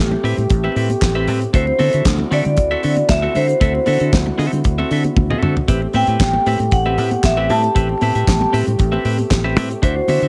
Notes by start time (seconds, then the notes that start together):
Already playing: A3 C4 G4
0.00 A1
0.11 muted clean electric guitar stroke, muted conga, high conga, low conga
0.24 A2 C4 G4 B4 E5, open hi-hat
0.38 A2, muted clean electric guitar stroke, closed hi-hat, low conga
0.50 A1, muted clean electric guitar stroke, kick, closed hi-hat, muted conga
0.64 C4 G4 B4 E5, muted conga
0.76 A2 C4 G4 B4 E5, open hi-hat
0.90 muted clean electric guitar stroke, closed hi-hat, high conga
1.02 A1, muted clean electric guitar stroke, kick, snare, clap, closed hi-hat, high conga
1.15 C4 G4 B4 E5
1.28 A2 C4 G4 B4 E5, open hi-hat, low conga
1.41 muted clean electric guitar stroke, closed hi-hat
1.53 D2 D3 C4 E4 F#4 A4 C5 E5, kick, closed hi-hat
1.67 muted clean electric guitar stroke, muted conga
1.79 D3 C4 F#4 A4 E5, open hi-hat, high conga
1.93 D3 C4 F#4 A4 E5, closed hi-hat
2.05 D2, kick, snare, clap, closed hi-hat, muted conga, high conga
2.19 muted clean electric guitar stroke, muted conga, high conga, low conga
2.31 D3 C4 F#4 A4 D5 E5, open hi-hat
2.45 D3, muted clean electric guitar stroke, closed hi-hat, low conga
2.57 D2, muted clean electric guitar stroke, kick, closed hi-hat, muted conga
2.71 C4 F#4 A4 E5
2.83 D3 C4 F#4 A4 E5, open hi-hat
2.96 muted clean electric guitar stroke, closed hi-hat, high conga
3.09 D2 E5, muted clean electric guitar stroke, kick, snare, clap, closed hi-hat, muted conga, high conga
3.22 C4 F#4 A4 E5
3.35 D3 C4 F#4 A4 C5 E5, open hi-hat, low conga
3.48 muted clean electric guitar stroke, closed hi-hat
3.61 D2 C4 F#4 A4 E5, kick, closed hi-hat, muted conga
3.75 muted clean electric guitar stroke, muted conga
3.86 D3 C4 F#4 A4 E5, open hi-hat, high conga
4.00 D3 C4 F#4 A4 E5, closed hi-hat
4.13 D2, muted clean electric guitar stroke, kick, snare, clap, closed hi-hat, muted conga, high conga
4.26 muted clean electric guitar stroke, high conga, low conga
4.38 D3 C4 F#4 A4 E5, open hi-hat
4.53 D3, muted clean electric guitar stroke, closed hi-hat, low conga
4.64 D2, muted clean electric guitar stroke, kick, closed hi-hat
4.78 C4 F#4 A4 E5, muted conga
4.91 D3 C4 F#4 A4 E5, open hi-hat
5.04 muted clean electric guitar stroke, closed hi-hat, high conga
5.16 D2, muted clean electric guitar stroke, kick, high tom, muted conga, high conga
5.30 C4 F#4 A4 E5, mid tom
5.42 D3 C4 F#4 A4 E5, mid tom, low conga
5.56 muted clean electric guitar stroke, floor tom
5.68 A1 A3 C4 G4 B4 E5, kick, closed hi-hat, muted conga
5.82 muted clean electric guitar stroke, muted conga
5.94 A2 C4 G4 B4 E5 G5, open hi-hat, high conga
6.07 A2 C4 G4 B4 E5, closed hi-hat
6.20 A1, kick, snare, clap, closed hi-hat, muted conga, high conga
6.34 muted clean electric guitar stroke, high conga, low conga
6.46 A2 C4 G4 B4 E5, open hi-hat
6.59 A2, muted clean electric guitar stroke, closed hi-hat, low conga
6.71 A1 F#5, muted clean electric guitar stroke, kick, closed hi-hat
6.86 C4 G4 B4 E5, muted conga
6.98 A2 C4 G4 B4 E5, open hi-hat
7.11 muted clean electric guitar stroke, closed hi-hat, high conga
7.24 A1 E5, muted clean electric guitar stroke, kick, snare, clap, closed hi-hat, high conga
7.37 C4 G4 B4 E5, muted conga
7.49 A2 C4 G4 B4 E5 A5, open hi-hat, low conga
7.63 muted clean electric guitar stroke, closed hi-hat
7.75 A1 C4 G4 B4 E5, kick, closed hi-hat
7.89 muted clean electric guitar stroke, muted conga
8.01 A2 C4 G4 B4 E5, open hi-hat, high conga
8.15 A2 C4 G4 B4 E5, closed hi-hat
8.27 A1, muted clean electric guitar stroke, kick, snare, clap, closed hi-hat, high conga
8.41 muted clean electric guitar stroke, muted conga, high conga, low conga
8.53 A2 C4 G4 B4 E5, open hi-hat
8.67 A2, muted clean electric guitar stroke, closed hi-hat, low conga
8.79 A1, muted clean electric guitar stroke, kick, closed hi-hat, muted conga
8.92 C4 G4 B4 E5, muted conga
9.05 A2 C4 G4 B4 E5, open hi-hat
9.18 muted clean electric guitar stroke, closed hi-hat, high conga
9.31 A1, muted clean electric guitar stroke, kick, snare, clap, closed hi-hat, high conga
9.44 C4 G4 B4 E5
9.56 A2 C4 G4 B4 E5, open hi-hat, low conga
9.70 muted clean electric guitar stroke, closed hi-hat
9.82 D2 D3 C4 D4 E4 F#4 C5 E5, kick, closed hi-hat
9.96 muted clean electric guitar stroke
10.08 D3 D4 F#4 C5 E5, open hi-hat, high conga
10.22 D3 D4 F#4 C5 E5, closed hi-hat